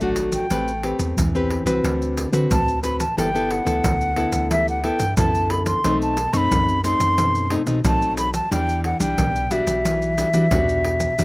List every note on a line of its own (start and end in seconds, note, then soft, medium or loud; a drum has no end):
0.00 0.41 G#1 medium
0.00 0.47 F#3 medium
0.00 0.46 A3 medium
0.00 0.46 D4 medium
0.00 0.46 F#4 medium
0.00 0.10 F#5 medium
0.00 pandeiro soft
0.00 maracas soft
0.16 pandeiro medium
0.16 maracas medium
0.32 0.97 G5 medium
0.32 pandeiro medium
0.32 maracas medium
0.32 surdo soft
0.50 0.93 A1 loud
0.50 1.14 A3 medium
0.50 0.71 C4 medium
0.50 0.71 G4 medium
0.50 0.71 B4 medium
0.50 pandeiro medium
0.50 maracas medium
0.50 surdo medium
0.68 pandeiro soft
0.68 maracas soft
0.83 1.15 C4 medium
0.83 1.15 G4 medium
0.83 1.16 B4 medium
0.83 pandeiro medium
0.99 1.14 E2 medium
0.99 pandeiro medium
0.99 maracas medium
0.99 surdo soft
1.17 1.60 E2 medium
1.17 1.81 E3 soft
1.17 pandeiro medium
1.17 maracas medium
1.17 surdo loud
1.35 1.63 C4 medium
1.35 1.63 G4 medium
1.35 1.63 B4 medium
1.35 pandeiro soft
1.35 maracas soft
1.50 pandeiro medium
1.65 1.80 C2 medium
1.65 2.28 C4 medium
1.65 2.28 F#4 medium
1.65 2.28 B4 medium
1.65 pandeiro medium
1.65 maracas medium
1.65 surdo soft
1.84 2.26 D2 loud
1.84 2.48 D3 medium
1.84 pandeiro medium
1.84 maracas medium
1.84 surdo medium
2.02 pandeiro soft
2.02 maracas soft
2.17 pandeiro medium
2.17 maracas medium
2.17 surdo soft
2.32 2.47 D3 medium
2.32 2.78 C4 medium
2.32 2.78 F#4 medium
2.32 2.79 B4 medium
2.32 pandeiro medium
2.32 maracas medium
2.32 surdo soft
2.50 3.07 D2 medium
2.50 3.14 A2 medium
2.50 2.82 A5 loud
2.50 pandeiro medium
2.50 maracas medium
2.50 surdo loud
2.68 pandeiro soft
2.68 maracas soft
2.83 3.03 C4 soft
2.83 3.03 F#4 medium
2.83 3.04 B4 medium
2.83 3.00 B5 medium
2.83 pandeiro medium
2.83 maracas medium
3.00 3.16 A5 medium
3.00 pandeiro medium
3.00 maracas medium
3.00 surdo soft
3.17 3.60 G1 loud
3.17 3.81 G3 medium
3.17 3.29 B3 medium
3.17 3.29 E4 soft
3.17 3.29 A4 medium
3.17 3.53 G5 medium
3.17 pandeiro medium
3.17 maracas medium
3.17 surdo medium
3.35 3.63 B3 medium
3.35 3.63 E4 medium
3.35 3.63 A4 medium
3.35 pandeiro soft
3.35 maracas soft
3.51 4.51 F#5 loud
3.51 pandeiro medium
3.65 3.81 D2 medium
3.65 4.11 B3 medium
3.65 4.11 E4 medium
3.65 4.12 A4 medium
3.65 pandeiro medium
3.65 maracas medium
3.65 surdo soft
3.84 4.27 D2 medium
3.84 4.47 D3 medium
3.84 pandeiro medium
3.84 maracas medium
3.84 surdo medium
4.01 pandeiro soft
4.01 maracas soft
4.16 4.79 B3 medium
4.16 4.79 E4 medium
4.16 4.79 A4 medium
4.16 pandeiro medium
4.32 4.90 D2 loud
4.32 pandeiro medium
4.32 maracas medium
4.32 surdo soft
4.51 5.14 G3 medium
4.51 4.67 E5 loud
4.51 pandeiro medium
4.51 maracas medium
4.51 surdo medium
4.68 4.86 F#5 medium
4.68 pandeiro soft
4.68 maracas soft
4.84 5.04 B3 medium
4.84 5.04 E4 medium
4.84 5.04 A4 medium
4.84 5.17 G5 medium
4.84 pandeiro medium
4.84 surdo soft
4.99 5.15 G2 medium
4.99 pandeiro medium
4.99 maracas medium
4.99 surdo soft
5.17 5.75 F#2 medium
5.17 5.81 D3 medium
5.17 5.79 B3 medium
5.17 5.79 E4 medium
5.17 5.79 A4 medium
5.17 5.52 A5 loud
5.17 pandeiro medium
5.17 maracas medium
5.17 surdo loud
5.35 pandeiro soft
5.35 maracas soft
5.50 5.66 B5 medium
5.50 pandeiro medium
5.66 5.98 C6 medium
5.66 pandeiro medium
5.66 maracas medium
5.66 surdo soft
5.84 6.27 B1 loud
5.84 6.48 B2 medium
5.84 6.16 A3 medium
5.84 6.16 C4 medium
5.84 6.16 D#4 medium
5.84 pandeiro medium
5.84 maracas medium
5.84 surdo soft
6.02 6.35 A5 medium
6.02 pandeiro soft
6.02 maracas soft
6.17 pandeiro medium
6.17 maracas medium
6.33 6.48 F#2 medium
6.33 6.79 A3 medium
6.33 6.79 C4 medium
6.33 6.79 D#4 medium
6.33 6.38 C#6 loud
6.33 pandeiro medium
6.33 maracas medium
6.33 surdo soft
6.37 6.84 B5 loud
6.51 6.94 F#2 medium
6.51 7.15 F#3 medium
6.51 pandeiro medium
6.51 maracas medium
6.51 surdo loud
6.69 pandeiro soft
6.69 maracas soft
6.84 7.46 A3 medium
6.84 7.46 C4 medium
6.84 7.46 D#4 medium
6.84 7.54 C6 loud
6.84 pandeiro medium
6.84 maracas medium
7.00 7.57 F#2 loud
7.00 pandeiro medium
7.00 maracas medium
7.00 surdo soft
7.18 7.81 B2 medium
7.18 pandeiro medium
7.18 maracas medium
7.18 surdo medium
7.35 pandeiro soft
7.35 maracas soft
7.50 7.61 A3 medium
7.50 7.61 C4 soft
7.50 7.62 D#4 medium
7.50 pandeiro medium
7.67 7.81 B2 medium
7.67 7.79 A3 medium
7.67 7.79 C4 medium
7.67 7.79 D#4 medium
7.67 pandeiro medium
7.67 maracas medium
7.67 surdo soft
7.84 8.41 B1 medium
7.84 8.48 F#3 medium
7.84 8.28 A3 medium
7.84 8.28 C4 medium
7.84 8.28 D#4 medium
7.84 8.17 A5 loud
7.84 pandeiro medium
7.84 maracas medium
7.84 surdo loud
8.02 pandeiro soft
8.02 maracas soft
8.17 8.34 B5 medium
8.17 pandeiro medium
8.17 maracas medium
8.34 8.50 A5 medium
8.34 pandeiro medium
8.34 maracas medium
8.34 surdo soft
8.51 8.94 E2 loud
8.51 9.15 E3 medium
8.51 8.96 G3 medium
8.51 8.96 D4 medium
8.51 8.83 G5 medium
8.51 pandeiro medium
8.51 maracas medium
8.51 surdo medium
8.69 pandeiro soft
8.69 maracas soft
8.84 9.00 F#5 medium
8.84 pandeiro medium
9.00 9.15 B1 medium
9.00 9.45 G3 medium
9.00 9.46 D4 medium
9.00 9.53 G5 medium
9.00 pandeiro medium
9.00 maracas medium
9.00 surdo soft
9.18 9.61 B1 medium
9.18 9.81 B2 medium
9.18 pandeiro medium
9.18 maracas medium
9.18 surdo loud
9.36 pandeiro soft
9.36 maracas soft
9.51 10.13 G3 medium
9.51 10.13 D4 medium
9.51 10.13 F#4 medium
9.51 11.24 E5 medium
9.51 pandeiro medium
9.51 maracas medium
9.67 10.24 B1 loud
9.67 pandeiro medium
9.67 maracas medium
9.67 surdo soft
9.85 10.48 E3 medium
9.85 pandeiro medium
9.85 maracas medium
9.85 surdo medium
10.02 pandeiro soft
10.02 maracas soft
10.18 10.28 G3 medium
10.18 10.28 D4 soft
10.18 10.28 F#4 medium
10.18 pandeiro medium
10.18 maracas medium
10.18 surdo soft
10.34 10.49 E3 medium
10.34 10.46 G3 medium
10.34 10.46 D4 medium
10.34 10.46 F#4 medium
10.34 pandeiro medium
10.34 maracas medium
10.34 surdo soft
10.51 11.09 E2 medium
10.51 11.15 B2 medium
10.51 11.13 G3 medium
10.51 11.13 D4 soft
10.51 11.13 F#4 medium
10.51 pandeiro medium
10.51 maracas medium
10.51 surdo loud
10.69 pandeiro soft
10.69 maracas soft
10.84 pandeiro medium
11.00 pandeiro medium
11.00 maracas medium
11.00 surdo soft
11.18 11.24 E2 loud
11.18 11.24 E3 medium
11.18 11.24 G3 medium
11.18 11.24 D4 medium
11.18 11.24 F#4 medium
11.18 pandeiro medium
11.18 maracas medium
11.18 surdo medium